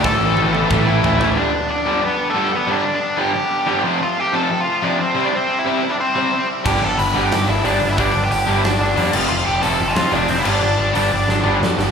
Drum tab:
CC |--------|--------|--------|--------|
HH |--------|--------|--------|--------|
SD |o-------|--------|--------|--------|
T1 |--oo----|--------|--------|--------|
T2 |----o---|--------|--------|--------|
FT |------oo|--------|--------|--------|
BD |o---o---|--------|--------|--------|

CC |--------|x-------|-------x|-------x|
HH |--------|--o-o-o-|o-o-o-o-|--o-o-o-|
SD |--------|----o---|----o---|----o---|
T1 |--------|--------|--------|--------|
T2 |--------|--------|--------|--------|
FT |--------|--------|--------|--------|
BD |--------|o-------|o-------|--------|

CC |--------|
HH |--o-----|
SD |----o-oo|
T1 |--------|
T2 |--------|
FT |--------|
BD |--------|